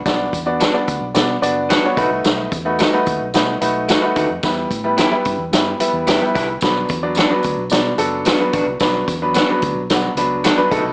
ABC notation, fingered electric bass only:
X:1
M:4/4
L:1/16
Q:1/4=110
K:Bm
V:1 name="Fingered electric bass" clef=bass
B,,,2 E,,3 z D,, B,,, B,,2 F,,,3 z B,,, =C,, | B,,,2 E,,3 z ^D,, B,,, B,,2 B,,,3 z D,, ^E,, | E,,2 A,,3 z G,, E,, G,,2 z E,, G,, z =C,,2 | B,,,2 E,,3 z D,, B,,, B,,2 F,,,3 z A,,, =C,, |
B,,,2 E,,3 z D,, B,,,3 C,,3 z B,,, =C,, |]